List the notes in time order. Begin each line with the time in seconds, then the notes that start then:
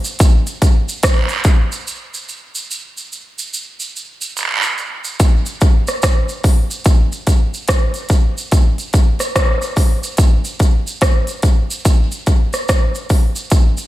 0.04 closed hi-hat, cabasa
0.19 kick, closed hi-hat, cabasa
0.47 closed hi-hat, cabasa
0.62 kick, closed hi-hat, cabasa
0.89 cabasa
1.03 kick, cross-stick, closed hi-hat, cabasa, long guiro
1.29 closed hi-hat, cabasa
1.44 kick, closed hi-hat, cabasa
1.72 cabasa
1.87 cabasa
2.14 cabasa
2.29 cabasa
2.55 cabasa
2.71 cabasa
2.97 cabasa
3.12 cabasa
3.39 cabasa
3.53 cabasa
3.80 cabasa
3.96 cabasa
4.21 cabasa
4.37 cabasa, long guiro
4.62 cabasa
4.78 cabasa
5.04 cabasa
5.20 kick, closed hi-hat, cabasa
5.46 closed hi-hat, cabasa
5.61 kick, closed hi-hat, cabasa
5.87 cross-stick, closed hi-hat, cabasa
6.02 kick, cross-stick, closed hi-hat, cabasa
6.29 closed hi-hat, cabasa
6.44 kick, open hi-hat, cabasa
6.71 closed hi-hat, cabasa
6.84 kick, closed hi-hat, cabasa
7.12 closed hi-hat, cabasa
7.27 kick, closed hi-hat, cabasa
7.54 cabasa
7.68 kick, cross-stick, closed hi-hat, cabasa
7.94 closed hi-hat, cabasa
8.09 kick, closed hi-hat, cabasa
8.38 cabasa
8.52 kick, closed hi-hat, cabasa
8.78 closed hi-hat, cabasa
8.93 kick, closed hi-hat, cabasa
9.19 cross-stick, closed hi-hat, cabasa
9.36 kick, cross-stick, closed hi-hat, cabasa
9.62 closed hi-hat, cabasa
9.76 kick, open hi-hat, cabasa
10.03 closed hi-hat, cabasa
10.17 kick, closed hi-hat, cabasa
10.45 closed hi-hat, cabasa
10.59 kick, closed hi-hat, cabasa
10.87 cabasa
11.01 kick, cross-stick, closed hi-hat, cabasa
11.27 closed hi-hat, cabasa
11.42 kick, closed hi-hat, cabasa
11.71 cabasa
11.85 kick, closed hi-hat, cabasa
12.12 closed hi-hat, cabasa
12.26 kick, closed hi-hat, cabasa
12.53 cross-stick, closed hi-hat, cabasa
12.68 kick, cross-stick, closed hi-hat, cabasa
12.95 closed hi-hat, cabasa
13.09 kick, open hi-hat, cabasa
13.36 closed hi-hat, cabasa
13.50 kick, closed hi-hat, cabasa
13.77 closed hi-hat, cabasa